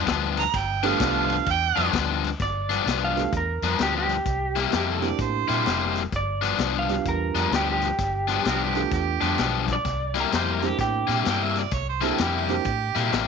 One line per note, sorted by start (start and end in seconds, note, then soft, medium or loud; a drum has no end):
0.06 0.46 D2 medium
0.06 0.42 G2 medium
0.06 0.42 F3 medium
0.06 0.42 B3 medium
0.06 0.42 D4 medium
0.06 kick medium
0.06 snare loud
0.06 ride medium
0.37 0.58 A#5 loud
0.37 snare soft
0.37 ride medium
0.53 0.92 G1 loud
0.53 0.87 G5 loud
0.53 kick medium
0.53 snare soft
0.53 ride medium
0.83 0.98 G2 medium
0.83 0.98 F3 medium
0.83 1.44 A3 medium
0.83 1.43 B3 medium
0.83 0.99 B3 medium
0.83 1.43 D4 medium
0.83 0.99 D4 loud
0.83 1.44 F4 medium
0.83 1.44 G4 medium
0.83 1.46 F5 loud
0.83 snare soft
0.83 ride medium
0.99 1.39 C2 loud
0.99 1.35 G2 medium
0.99 1.35 F3 medium
0.99 1.35 B3 medium
0.99 1.35 D4 medium
0.99 kick medium
0.99 snare loud
0.99 ride medium
1.30 snare soft
1.30 ride medium
1.46 1.72 E2 loud
1.46 1.94 G5 loud
1.46 kick medium
1.46 snare soft
1.46 ride medium
1.76 1.91 F2 medium
1.76 1.92 G2 medium
1.76 1.92 F3 medium
1.76 1.92 B3 medium
1.76 1.93 D4 loud
1.76 snare soft
1.76 ride medium
1.93 2.32 D2 loud
1.93 2.28 G2 medium
1.93 2.28 F3 medium
1.93 2.29 B3 medium
1.93 2.29 D4 medium
1.93 kick medium
1.93 snare loud
1.93 ride medium
2.24 snare soft
2.24 ride medium
2.40 2.79 G1 medium
2.40 3.01 D5 medium
2.40 kick loud
2.40 snare soft
2.40 closed hi-hat medium
2.69 2.85 G2 medium
2.69 2.85 F3 medium
2.69 2.86 B3 medium
2.69 2.86 D4 medium
2.69 snare soft
2.69 closed hi-hat medium
2.86 3.25 C2 medium
2.86 3.21 G2 medium
2.86 3.21 F3 medium
2.86 3.22 B3 medium
2.86 3.22 D4 medium
2.86 snare loud
2.86 closed hi-hat medium
3.04 3.34 F5 medium
3.16 3.31 A3 medium
3.16 3.32 B3 medium
3.16 3.32 D4 medium
3.16 3.32 F4 soft
3.16 3.32 G4 medium
3.16 snare soft
3.16 closed hi-hat medium
3.33 3.58 E2 medium
3.33 kick medium
3.33 closed hi-hat medium
3.37 3.80 A#4 medium
3.62 3.77 F2 medium
3.62 3.78 G2 medium
3.62 3.79 F3 medium
3.62 3.79 B3 medium
3.62 3.79 D4 medium
3.62 snare soft
3.62 closed hi-hat medium
3.79 4.19 D2 medium
3.79 4.14 G2 medium
3.79 4.15 F3 medium
3.79 4.15 B3 medium
3.79 4.15 D4 medium
3.79 snare loud
3.79 closed hi-hat medium
3.83 3.96 G4 medium
3.98 4.87 G4 medium
4.09 snare soft
4.09 closed hi-hat medium
4.25 4.65 C2 medium
4.25 kick loud
4.25 closed hi-hat medium
4.56 4.71 C3 medium
4.56 4.72 G3 medium
4.56 4.72 A#3 medium
4.56 4.73 E4 medium
4.56 snare soft
4.56 closed hi-hat medium
4.72 5.12 F2 medium
4.72 5.08 C3 medium
4.72 5.08 G3 medium
4.72 5.08 A#3 medium
4.72 5.08 E4 medium
4.72 4.91 G4 medium
4.72 snare loud
4.72 closed hi-hat medium
4.90 5.06 A4 medium
5.02 5.62 A#3 medium
5.02 5.62 C4 medium
5.02 5.62 D4 medium
5.02 5.63 E4 medium
5.02 5.62 G4 medium
5.02 5.19 D5 medium
5.02 snare soft
5.02 closed hi-hat medium
5.19 5.44 A2 medium
5.19 6.03 C5 medium
5.19 kick loud
5.19 closed hi-hat medium
5.48 5.63 A#2 medium
5.48 5.65 C3 medium
5.48 5.66 G3 medium
5.48 5.66 A#3 medium
5.48 5.65 E4 medium
5.48 snare soft
5.48 closed hi-hat soft
5.66 6.05 F1 medium
5.66 6.01 C3 medium
5.66 6.01 G3 medium
5.66 6.01 A#3 medium
5.66 6.01 E4 medium
5.66 snare loud
5.66 closed hi-hat medium
5.95 snare soft
5.95 closed hi-hat medium
6.12 6.51 G1 medium
6.12 6.75 D5 medium
6.12 kick loud
6.12 closed hi-hat medium
6.41 6.57 G2 medium
6.41 6.57 F3 medium
6.41 6.58 B3 medium
6.41 6.58 D4 loud
6.41 snare soft
6.41 closed hi-hat medium
6.58 6.98 C2 medium
6.58 6.94 G2 medium
6.58 6.94 F3 medium
6.58 6.94 B3 medium
6.58 6.94 D4 medium
6.58 snare loud
6.58 closed hi-hat medium
6.79 7.07 F5 medium
6.89 7.49 G3 medium
6.89 7.49 B3 medium
6.89 7.49 D4 medium
6.89 7.50 F4 medium
6.89 7.50 G4 medium
6.89 snare soft
6.89 closed hi-hat medium
7.05 7.30 E2 medium
7.05 7.52 A#4 medium
7.05 kick medium
7.05 closed hi-hat medium
7.35 7.49 F2 medium
7.35 7.50 G2 medium
7.35 7.52 F3 medium
7.35 7.52 B3 medium
7.35 7.52 D4 medium
7.35 snare soft
7.35 closed hi-hat medium
7.51 7.91 D2 medium
7.51 7.87 G2 medium
7.51 7.87 F3 medium
7.51 7.88 B3 medium
7.51 7.88 D4 medium
7.51 snare loud
7.51 closed hi-hat medium
7.56 7.69 G4 medium
7.71 8.60 G4 medium
7.81 snare soft
7.81 closed hi-hat medium
7.98 8.37 G1 medium
7.98 kick loud
7.98 snare soft
7.98 closed hi-hat medium
8.28 8.44 G2 medium
8.28 8.44 F3 medium
8.28 8.44 B3 medium
8.28 8.44 D4 medium
8.28 snare soft
8.28 closed hi-hat medium
8.45 8.85 C2 medium
8.45 8.80 G2 medium
8.45 8.80 F3 medium
8.45 8.80 B3 medium
8.45 8.80 D4 medium
8.45 8.65 A#4 medium
8.45 snare loud
8.45 closed hi-hat medium
8.63 8.92 G4 medium
8.75 9.35 A3 medium
8.75 9.36 B3 medium
8.75 9.36 D4 medium
8.75 9.36 F4 medium
8.75 9.36 G4 medium
8.75 snare soft
8.75 closed hi-hat medium
8.91 9.17 E2 medium
8.91 9.62 G4 medium
8.91 kick loud
8.91 snare soft
8.91 closed hi-hat medium
9.21 9.36 F2 medium
9.21 9.37 G2 medium
9.21 9.38 F3 medium
9.21 9.38 B3 medium
9.21 9.38 D4 medium
9.21 snare soft
9.21 closed hi-hat medium
9.38 9.78 B1 medium
9.38 9.74 G2 medium
9.38 9.74 F3 medium
9.38 9.74 B3 medium
9.38 9.74 D4 medium
9.38 snare loud
9.38 closed hi-hat medium
9.68 kick medium
9.68 snare soft
9.68 closed hi-hat medium
9.73 10.17 D5 medium
9.84 10.24 C2 medium
9.84 kick loud
9.84 snare soft
9.84 closed hi-hat medium
10.14 10.30 C3 medium
10.14 10.31 G3 medium
10.14 10.31 A#3 medium
10.14 10.31 E4 loud
10.14 snare soft
10.14 closed hi-hat medium
10.20 10.35 A#4 medium
10.31 10.72 F2 medium
10.31 10.67 C3 medium
10.31 10.67 G3 medium
10.31 10.67 A#3 medium
10.31 10.67 E4 medium
10.31 10.51 C5 medium
10.31 snare loud
10.31 closed hi-hat medium
10.51 10.66 A#4 medium
10.62 11.23 A#3 medium
10.62 11.23 C4 medium
10.62 11.23 D4 medium
10.62 11.23 E4 medium
10.62 11.23 G4 medium
10.62 snare soft
10.62 closed hi-hat medium
10.66 10.79 G4 medium
10.78 11.04 A2 medium
10.78 11.25 G4 medium
10.78 kick medium
10.78 snare soft
10.78 closed hi-hat medium
11.07 11.23 A#2 medium
11.07 11.23 C3 medium
11.07 11.23 G3 medium
11.07 11.24 A#3 medium
11.07 11.24 E4 medium
11.07 snare soft
11.07 closed hi-hat medium
11.24 11.65 G2 medium
11.24 11.60 C3 medium
11.24 11.60 G3 medium
11.24 11.60 A#3 medium
11.24 11.60 E4 medium
11.24 11.46 G5 medium
11.24 snare loud
11.24 closed hi-hat medium
11.44 11.60 E5 medium
11.55 11.73 D5 medium
11.55 snare soft
11.55 closed hi-hat medium
11.71 12.11 C2 medium
11.71 11.88 C#5 medium
11.71 kick loud
11.71 closed hi-hat medium
11.89 12.05 C5 medium
12.01 12.17 C3 medium
12.01 12.18 G3 medium
12.01 12.18 A#3 medium
12.01 12.17 A#3 medium
12.01 12.17 C4 medium
12.01 12.18 D4 medium
12.01 12.18 E4 loud
12.01 12.18 E4 medium
12.01 12.18 G4 medium
12.01 12.19 A4 medium
12.01 snare soft
12.01 closed hi-hat medium
12.18 12.58 F2 loud
12.18 12.54 C3 medium
12.18 12.54 G3 medium
12.18 12.54 A#3 medium
12.18 12.54 E4 medium
12.18 12.36 G4 medium
12.18 snare loud
12.18 closed hi-hat medium
12.37 13.27 G4 loud
12.49 12.64 A#3 medium
12.49 12.64 C4 medium
12.49 12.64 D4 medium
12.49 12.65 E4 medium
12.49 12.65 G4 medium
12.49 snare soft
12.49 closed hi-hat medium
12.65 12.90 A2 medium
12.65 kick loud
12.65 closed hi-hat medium
12.95 13.10 A#2 medium
12.95 13.10 C3 medium
12.95 13.11 G3 medium
12.95 13.11 A#3 medium
12.95 13.12 E4 medium
12.95 snare soft
12.95 closed hi-hat medium
13.12 13.27 A1 medium
13.12 13.27 C3 medium
13.12 13.27 G3 medium
13.12 13.27 A#3 medium
13.12 13.27 E4 medium
13.12 snare loud
13.12 closed hi-hat medium